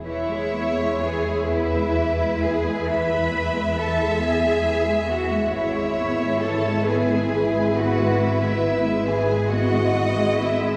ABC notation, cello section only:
X:1
M:12/8
L:1/8
Q:3/8=45
K:E
V:1 name="Cello section"
E2 G E2 G B2 A G2 F | E2 A G2 F E2 G F2 E |]